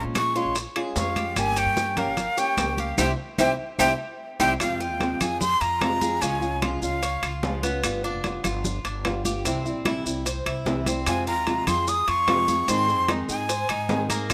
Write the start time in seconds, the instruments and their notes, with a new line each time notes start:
Already playing: nylon-string guitar F3 G#3 C#4 F4, cuban tres C#4
0.05 upright bass A#2
0.15 cuban tres G#4, flute C#6, high bongo, high conga, high timbale, low timbale, claves, maracas
0.35 nylon-string guitar G#3 C#4 F4, cuban tres C#5, flute C6, high conga, maracas
0.46 upright bass A#1
0.55 muted nylon-string guitar stroke, high bongo, high conga, high timbale, maracas
0.76 nylon-string guitar G#3 C#4 F4, cuban tres G#4, high bongo, high conga, high timbale, claves
0.96 upright bass F2, nylon-string guitar F3 G#3 C#4 F4, cuban tres C#5, flute F5, high bongo, low bongo, high conga, low timbale, maracas
1.16 cuban tres G4, high bongo, high conga, high timbale, maracas
1.36 upright bass G1, nylon-string guitar G3 A#3 C#4 G4, flute G#5, high bongo, high conga, high timbale, claves, maracas
1.56 cuban tres C#4, flute G5, high bongo, high conga, high timbale, maracas
1.66 upright bass G2
1.77 high bongo, high conga, low timbale, maracas
1.97 nylon-string guitar A#3 C#4 G4, cuban tres A#4, flute F5, high conga, low conga, high timbale, claves, maracas
2.07 upright bass G1
2.17 muted nylon-string guitar stroke, high bongo, high conga, low conga, high timbale, maracas
2.37 nylon-string guitar A#3 C#4 G4, cuban tres C#4, flute G5, high bongo, high conga, maracas
2.57 upright bass C#2, nylon-string guitar G3 A#3 C#4 G4, high bongo, low bongo, high conga, high timbale, low timbale, claves, maracas
2.78 cuban tres G4, flute F5, high bongo, high conga, maracas
2.98 upright bass C2, nylon-string guitar G3 C4 E4, cuban tres E4 G4 C5, flute G5, low bongo, high conga, high timbale, claves, maracas
3.38 upright bass C2, nylon-string guitar G3 C4 E4, cuban tres E4 G4 C5, flute G5, low bongo, high conga, high timbale, claves, maracas
3.79 upright bass C2, nylon-string guitar G3 C4 E4, cuban tres E4 G4 C5, flute G5, low bongo, high conga, high timbale, claves, maracas
4.40 upright bass C2, nylon-string guitar G3 C4 E4, cuban tres E4 G4 C5, flute G5, low bongo, high conga, high timbale, claves, maracas
4.60 upright bass F2, nylon-string guitar C3 F3 G#3 C4 F4, flute F5, high bongo, high conga, high timbale, claves, maracas
4.80 nylon-string guitar G#3 C4 F4, cuban tres F4, flute G5, high conga, maracas
4.91 upright bass D#2
5.00 nylon-string guitar C3 F3 G#3 C4 F4, high bongo, high conga, high timbale, low timbale, maracas
5.21 upright bass F2, nylon-string guitar G#3 C4 F4, cuban tres G#4, flute G#5, high conga, low conga, high timbale, claves, maracas
5.41 flute C6, muted nylon-string guitar stroke, high bongo, high conga, low conga, maracas
5.61 upright bass F2, cuban tres F4, flute A#5, high conga, high timbale, maracas
5.81 nylon-string guitar C3 F3 G#3 C4 F4, high bongo, low bongo, high conga, high timbale, low timbale, claves, maracas
6.01 nylon-string guitar G#3 C4 F4, cuban tres G#4, high conga, maracas
6.21 upright bass C#2, nylon-string guitar C#3 F3 G#3 C#4 F4, cuban tres C#4, flute G#5, high bongo, high conga, high timbale, maracas
6.41 nylon-string guitar G#3 C#4 F4, high bongo, high conga, maracas
6.52 upright bass C2
6.62 nylon-string guitar C#3 F3 G#3 C#4 F4, cuban tres F4, high bongo, high conga, high timbale, low timbale, claves, maracas
6.82 upright bass C#2, nylon-string guitar G#3 C#4 F4, flute F5, high bongo, high conga, maracas
7.02 cuban tres C#5, muted nylon-string guitar stroke, high bongo, high conga, high timbale, maracas
7.22 upright bass C#2, cuban tres F4, high bongo, high conga, high timbale, claves, maracas
7.43 nylon-string guitar C#3 F3 G#3 C#4 F4, high bongo, low bongo, high conga, low timbale, maracas
7.63 nylon-string guitar G#3 C#4 F4, cuban tres B3, high conga, high timbale, maracas
7.83 upright bass G1, nylon-string guitar G3 B3 F4, high bongo, high conga, high timbale, claves, maracas
8.04 nylon-string guitar B3 F4, cuban tres D4, high conga, maracas
8.14 upright bass F1
8.24 nylon-string guitar G3 B3 F4, high bongo, high conga, high timbale, low timbale, maracas
8.44 upright bass G1, nylon-string guitar B3 F4, cuban tres F4, high conga, low conga, high timbale, claves, maracas
8.64 muted nylon-string guitar stroke, high bongo, high conga, low conga, maracas
8.84 upright bass G1, cuban tres D4, high conga, high timbale, maracas
9.04 nylon-string guitar G3 B3 F4, high bongo, low bongo, high conga, high timbale, low timbale, claves, maracas
9.25 nylon-string guitar B3 F4, cuban tres G4, high conga, maracas
9.45 upright bass C2, nylon-string guitar C3 E3 G3 C4 E4, cuban tres C4, high bongo, high conga, high timbale, maracas
9.65 nylon-string guitar G3 C4 E4, high bongo, high conga, maracas
9.75 upright bass A#1
9.85 nylon-string guitar C3 E3 G3 C4 E4, cuban tres E4, high bongo, high conga, high timbale, low timbale, claves, maracas
10.06 upright bass C2, nylon-string guitar G3 C4 E4, high bongo, high conga, maracas
10.25 cuban tres C5, muted nylon-string guitar stroke, high bongo, high conga, high timbale, maracas
10.46 upright bass C2, cuban tres E4, high bongo, high conga, high timbale, claves, maracas
10.66 nylon-string guitar C3 E3 G3 C4 E4, high bongo, low bongo, high conga, low timbale, maracas
10.86 nylon-string guitar G3 C4 E4, cuban tres C4, high conga, high timbale, maracas
11.06 upright bass F2, nylon-string guitar C3 F3 G#3 C4 F4, flute G#5, high bongo, high conga, high timbale, claves, maracas
11.27 nylon-string guitar G#3 C4 F4, cuban tres F4, flute A#5, high conga, maracas
11.37 upright bass D#2
11.47 nylon-string guitar C3 F3 G#3 C4 F4, high bongo, high conga, high timbale, low timbale, maracas
11.67 upright bass F2, nylon-string guitar G#3 C4 F4, cuban tres G#4, flute C6, high conga, low conga, high timbale, claves, maracas
11.88 flute D#6, muted nylon-string guitar stroke, high bongo, high conga, maracas
12.08 upright bass F2, cuban tres F4, flute C#6, high conga, high timbale, maracas
12.27 nylon-string guitar C3 F3 G#3 C4 F4, high bongo, low bongo, high conga, high timbale, low timbale, claves, maracas
12.48 nylon-string guitar G#3 C4 F4, cuban tres G#4, high conga, maracas
12.68 upright bass G#2, nylon-string guitar D#3 G#3 C4 D#4 G#4, cuban tres C4, flute C6, high bongo, high conga, high timbale, maracas
12.88 nylon-string guitar C4 D#4 G#4, high bongo, high conga, maracas
12.98 upright bass F2
13.08 nylon-string guitar D#3 G#3 C4 D#4 G#4, cuban tres D#4, high bongo, high conga, high timbale, low timbale, claves, maracas
13.29 upright bass G#2, nylon-string guitar C4 D#4 G#4, flute G#5, high bongo, high conga, maracas
13.49 cuban tres C5, muted nylon-string guitar stroke, high bongo, high conga, high timbale, maracas
13.69 upright bass G#2, cuban tres D#4, high bongo, high conga, high timbale, claves, maracas
13.89 nylon-string guitar D#3 G#3 C4 D#4 G#4, high bongo, low bongo, high conga, low timbale, maracas
14.09 cuban tres A#3, nylon-string guitar C4 D#4 G#4, high conga, high timbale, maracas
14.29 upright bass A#1, nylon-string guitar F3 A#3, high bongo, high conga, high timbale, maracas